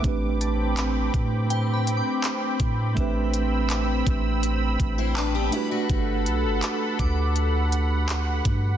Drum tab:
HH |xxxxxxxx|xxxxxxxx|xxxxxxxx|
CP |--x---x-|--x---x-|--x---x-|
BD |o--o---o|o--o-o--|o--o---o|